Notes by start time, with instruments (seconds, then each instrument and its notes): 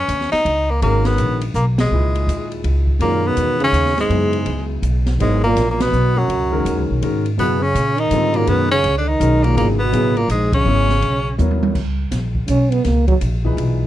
Already playing: tenor saxophone C#4
0.08 upright bass D#2, hi-hat pedal, ride
0.21 snare
0.32 tenor saxophone D#4, muted upright bass stroke, snare, ride
0.45 upright bass C#2, ride
0.71 tenor saxophone A#3
0.81 upright bass G#1, grand piano D#3 G#3 C#4 F#4 A#4, tenor saxophone A#3, ride
1.05 tenor saxophone B3, snare, ride
1.18 upright bass A#1, hi-hat pedal, ride
1.41 ride
1.54 upright bass B1, tenor saxophone A#3, hi-hat pedal
1.78 tenor saxophone G#3, snare, ride
1.91 upright bass C#2, grand piano A#2 D#4 E4 G#4 B4
2.15 ride
2.27 upright bass D#2, hi-hat pedal, ride
2.52 ride
2.64 upright bass C#2, ride
2.87 kick
2.99 upright bass F#2, trombone A#2, grand piano D#3 G#3 C#4 F#4 A#4, tenor saxophone A#3, ride
3.24 trombone B2, tenor saxophone B3
3.36 upright bass E2, hi-hat pedal, ride
3.60 trombone C#3, ride
3.64 tenor saxophone C#4
3.72 upright bass D#2, hi-hat pedal, ride
3.86 snare
3.96 trombone G#2, snare, ride
4.01 tenor saxophone G#3
4.09 upright bass F#2, grand piano C#3 F#3 B3 E4 G#4, ride
4.33 ride
4.46 upright bass C#2, ride
4.82 upright bass B1, hi-hat pedal, ride
5.06 snare, ride
5.19 upright bass G#1, trombone G#2, grand piano F#3 B3 E4 A#4 C#5, tenor saxophone G#3, ride
5.44 trombone A#2, tenor saxophone A#3
5.56 upright bass A#1, snare, hi-hat pedal, ride
5.71 trombone A#2, tenor saxophone A#3
5.80 trombone B2, tenor saxophone B3, snare, ride
5.92 upright bass B1, hi-hat pedal
6.17 trombone F#2, tenor saxophone F#3
6.28 upright bass C#2, ride
6.51 grand piano D#3 G#3 C#4 F#4 A#4
6.65 upright bass D#2, hi-hat pedal, ride
6.77 upright bass C#2
6.90 upright bass B1
7.02 upright bass G#2, grand piano D#3 G#3 C#4 F#4 A#4, ride
7.26 ride
7.38 upright bass F#2, trombone B2, grand piano C#3 F#3 B3 E4 G#4, tenor saxophone B3, ride
7.61 trombone C#3, tenor saxophone C#4
7.75 upright bass A#2, hi-hat pedal, ride
7.98 trombone D#3, tenor saxophone D#4, ride
8.11 upright bass G#2, grand piano D3 G3 C4 F4 A4, hi-hat pedal, ride
8.34 trombone A#2, grand piano D#3 G#3 C#4 F#4 A#4, tenor saxophone A#3, ride
8.47 upright bass F#2, trombone B2, grand piano D#3 G#3 C#4 F#4 A#4, tenor saxophone B3, ride
8.72 trombone C#3, tenor saxophone C#4
8.84 upright bass C#2, ride
8.98 trombone D3, tenor saxophone D4
9.08 trombone D#3, tenor saxophone D#4
9.19 upright bass B1, grand piano D#3 G#3 C#4 F#4 A#4, hi-hat pedal, ride
9.44 trombone A#2, tenor saxophone A#3, ride
9.55 upright bass G#1, trombone A#2, grand piano C#3 F#3 B3 E4 G#4, tenor saxophone A#3, ride
9.79 trombone B2, tenor saxophone B3
9.93 upright bass A1, grand piano C#3 F#3 B3 E4 G#4, hi-hat pedal, ride
10.16 trombone A#2, tenor saxophone A#3, ride
10.28 upright bass A#1, trombone G#2, tenor saxophone G#3, hi-hat pedal, ride
10.53 trombone C#3, tenor saxophone C#4, kick, ride
10.65 upright bass G#1, grand piano C#3 F#3 B3 E4 G#4
10.89 snare
11.02 upright bass B1, ride
11.38 upright bass D#2, grand piano F#3 B3 E4 A#4 C#5, hi-hat pedal, high tom
11.51 high tom
11.63 high tom
11.75 upright bass C#2, kick, crash
12.11 upright bass A#1, snare, hi-hat pedal, ride
12.35 kick
12.48 upright bass B1, trombone C#4, hi-hat pedal, ride
12.71 trombone B3, ride
12.84 upright bass C#2, trombone A#3, snare, ride
13.08 trombone F#3, kick, ride
13.21 upright bass A#1, hi-hat pedal, ride
13.45 grand piano A#2 E3 D#4 G#4 B4, kick
13.57 upright bass B1, ride